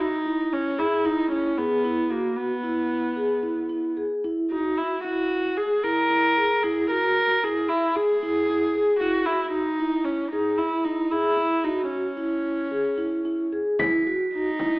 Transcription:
Already playing: F#4
0.00 D#4
0.26 E4
0.53 C#4
0.79 E4 G#4
1.05 D#4 E4
1.31 C#4 E4
1.58 B3 G#4
1.85 E4
2.11 A#3 F#4
2.36 B3
2.64 E4
3.16 G#4
3.43 E4
3.69 E4
3.97 G#4
4.24 E4
4.51 D#4 F#4
4.77 E4
5.04 E4 F#4
5.57 G#4
5.83 E4 A#4
6.10 E4
6.37 G#4
6.63 E4 G#4
6.90 F#4 A#4
7.44 E4 G#4
7.69 E4
7.96 G#4
8.23 E4
8.50 E4
8.75 G#4
9.00 E4 F#4
9.26 E4 F#4
9.52 D#4
9.80 E4
10.04 C#4
10.31 D#4 G#4
10.58 E4
10.84 D#4 E4
11.11 E4 G#4
11.37 E4
11.64 D#4 F#4
11.89 C#4
12.17 E4
12.71 G#4
12.98 E4
13.25 E4
13.52 G#4
13.79 E4 B6, frame drum
14.07 F#4
14.34 D#4
14.59 E4, frame drum

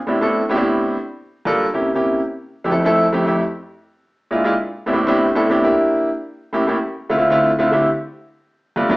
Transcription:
0.07 A2 B3 C4 D4 E4 G4
0.21 A2 B3 C4 D4 E4 A4
0.49 A2 B3 C4 D4 E4 G4
0.56 A2 B3 C4 D4 E4 G4
1.45 G2 A#3 D4 F4 A4
1.73 C3 A#3 C#4 E4 G4
1.94 C3 A#3 C#4 E4 G4
2.64 F2 A3 C4 E4 G4
2.71 F2 A3 C4 E4 A4
2.85 F2 A3 C4 E4 A4
3.13 F2 A3 C4 E4 G4
3.26 F2 A3 C4 E4 G4
4.31 A#2 G#3 D4 E4 F4
4.44 A#2 G#3 D4 E4 F4
4.86 A2 B3 C4 D4 E4 G4
4.93 A2 B3 C4 D4 E4 G4
5.07 A2 B3 C4 D4 E4 G4
5.35 A2 B3 C4 D4 E4 A4
5.49 A2 B3 C4 D4 E4 G4
5.63 A#3 D4 E4 G4
6.53 A2 A#3 C#4 E4 G4
6.67 A2 A#3 C#4 E4 G4
7.09 D3 A3 C4 E4 F4
7.17 D3 A3 C4 E4 F4
7.30 D3 A3 C4 E4 F4
7.59 D3 A3 C4 E4 F4
7.72 D3 A3 C4 E4 G4
8.76 G2 A3 B3 D4 F4
8.90 G2 A3 B3 D4 F4

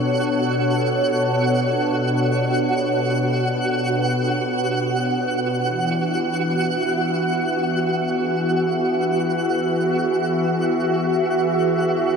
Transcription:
Already playing: B2 B3 D4 F#4 A4 C#5 F#5
5.63 E3
6.40 F#4
6.63 E5
8.03 G#4

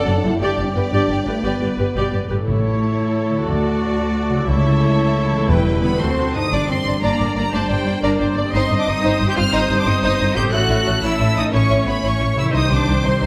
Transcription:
Already playing: F#2 E3 A3 C#4 D4 A4 D5 F#5
0.07 F#1 F#2 A4 D5
0.17 D4
0.23 F#1 F#2 G2 E4 A4
0.27 G3
0.32 D4
0.36 D5
0.40 G1 G2 D4 G4 D5
0.58 G1 G2 G4 D5
0.67 C#4
0.74 G1 G2 B3 G4 B4
0.92 G1 G2 D4 G4 D5
1.09 G1 G2 G4 D5
1.26 G1 G2 A3 G4 B4
1.43 G1 G2 B3 G4 B4 D5
1.61 G1 G2 G4 D5
1.78 G1 G2 G4 B4
1.96 G1 B2 G4 D5
2.12 G1 G4 D5
2.22 A2
2.29 G1 G2 A2 G4 B4
2.34 A3
2.38 C#4
2.43 A1 A3 E4 A4 C#5
2.47 A2 E4 C#5
3.30 D3
3.34 A3
3.38 F#4
3.43 F#4 A4
3.48 D2 F#4 D5
4.29 C#3
4.34 A3
4.38 E4
4.43 A4
4.47 C#2 A3 E4 A4 C#5 E5
5.32 E3
5.36 B3
5.40 E4
5.45 G4 B4
5.49 E1 E2 G3 B4 G5
5.82 D3 B3 B5
5.87 C4
5.91 F#4
5.96 F#4 A4 A5 C6
6.00 D2 A3 C4 F#4 C5
6.34 G2 D#4 D#6
6.39 D4
6.43 G4
6.48 G3 D4 A#4 D5
6.52 G1 D6
6.69 G1 C4 D4 D5 C6
6.86 G1 D4 D5
7.02 G1 A#3 D4 D5 A#5
7.19 G1 D4 D5
7.36 G1 A#3 D4 D5 A#5
7.52 G1 A3 D4 C5 D5 A5
7.69 G1 G3 D4 D5 G5
7.86 G1 D4 D5
8.02 G1 A#3 D4 A#4 D5 A#5
8.19 G1 D4 C5 D5
8.35 G1 G2 D4 D5
8.40 C4
8.45 G4
8.49 G1 C5 D#5 C6
8.53 G3 C4 D#4 C5
8.70 G1 D#4 C5
8.78 D4 D6
8.86 G1 D#4 C5 D#6
9.03 G1 D#4 C5
9.20 G1 D#4 C5
9.28 G4 G6
9.36 G1 D#4 F4 C5 F6
9.53 G1 D#4 C5 D#6
9.71 G1 D#4 C5
9.78 D4 D6
9.86 G1 D#4 C5 D#6
10.02 G1 D#4 C5 D#6
10.20 G1 D#4 C5
10.35 G1 A2 D#4 G4 C5 G6
10.40 C#4
10.44 E4
10.49 A1 E4 A4 C#5 F#6
10.53 A3 C#4 F#4
10.69 A1 E4 C#5
10.86 A1 E4 C#5
11.03 A1 E4 C#5 E6
11.19 A1 E4 C#5
11.36 A1 D#4 E4 C#5 D#6
11.52 A1 C#4 E4 C#5 C#6
11.69 A1 E4 C#5
11.86 A1 B3 E4 C#5 B5
12.03 A1 C#4 E4 C#5 C#6
12.20 A1 E4 C#5
12.36 A1 C3 E4 C#5 E6
12.40 C4
12.45 D#3
12.49 D#4 G4 C5
12.54 C2 D#3 G3 D#4 D#6
12.71 C2 D4 D#4 C5 D6
12.87 C2 D#4 C5
13.04 C2 C4 D#4 C5 C6
13.21 C2 D#4 C5

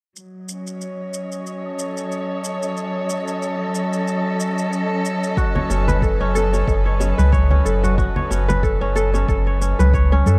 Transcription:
0.16 F#3 D#5, shaker
0.49 C#4, shaker
0.55 C#5
0.67 shaker
0.81 shaker
1.14 shaker
1.32 shaker
1.47 shaker
1.65 A4
1.79 shaker
1.97 shaker
2.12 shaker
2.44 shaker
2.63 shaker
2.77 shaker
3.10 shaker
3.28 shaker
3.42 shaker
3.75 shaker
3.93 shaker
4.08 shaker
4.40 shaker
4.58 shaker
4.73 shaker
5.05 shaker
5.23 shaker
5.37 F#4, kick, shaker
5.55 B4 C#5, low conga
5.70 F#1 C#4, high bongo, shaker
5.88 B4, high conga, low conga, shaker
6.02 A4, kick, shaker
6.20 F#1 C#4
6.35 A4, high bongo, shaker
6.53 C#4, high bongo, shaker
6.68 F#1 A4, kick, shaker
6.86 C#5
7.00 C#4, high bongo, shaker
7.18 C#2 B4, high conga, shaker
7.32 C#5, kick, shaker
7.51 C#4, low conga
7.65 F#1 A4, shaker
7.83 F#4, high conga, shaker
7.98 F#4, kick, shaker
8.16 C#5, low conga
8.30 F#1 C#4, high bongo, shaker
8.48 B4, high conga, low conga, shaker
8.63 A4, kick, shaker
8.81 F#1 C#4
8.95 A4, high bongo, shaker
9.14 C#4, high bongo, shaker
9.28 F#1 A4, kick, shaker
9.47 C#5
9.61 C#4, shaker
9.79 C#2 B4, high conga, shaker
9.94 C#5, kick, shaker
10.12 C#4, high conga
10.26 F#2 A4, high conga, shaker

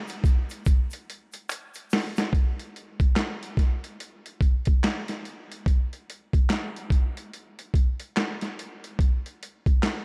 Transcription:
0.08 closed hi-hat, shaker
0.24 kick, closed hi-hat, shaker
0.50 closed hi-hat, shaker
0.65 kick, closed hi-hat, shaker
0.91 closed hi-hat, shaker
1.10 closed hi-hat
1.32 closed hi-hat, shaker
1.49 finger snap, closed hi-hat, shaker
1.74 closed hi-hat, shaker
1.90 snare, open hi-hat, shaker
2.16 snare, closed hi-hat, shaker
2.33 kick, closed hi-hat
2.59 closed hi-hat
2.76 closed hi-hat
3.00 kick, closed hi-hat
3.16 snare, clap, closed hi-hat
3.43 closed hi-hat
3.57 kick, snare, closed hi-hat
3.84 closed hi-hat
4.00 closed hi-hat
4.26 closed hi-hat
4.41 kick, closed hi-hat
4.65 kick, closed hi-hat
4.84 snare, clap, closed hi-hat
5.08 snare, closed hi-hat
5.25 closed hi-hat
5.52 closed hi-hat
5.66 kick, closed hi-hat
5.93 closed hi-hat
6.10 closed hi-hat
6.33 kick, closed hi-hat
6.50 snare, clap, closed hi-hat
6.76 closed hi-hat
6.90 kick, closed hi-hat
7.17 closed hi-hat
7.33 closed hi-hat
7.59 closed hi-hat
7.74 kick, closed hi-hat
8.00 closed hi-hat
8.17 snare, clap, closed hi-hat
8.41 snare, closed hi-hat
8.59 closed hi-hat
8.84 closed hi-hat
8.99 kick, closed hi-hat
9.26 closed hi-hat
9.43 closed hi-hat
9.66 kick, closed hi-hat
9.83 snare, clap, closed hi-hat

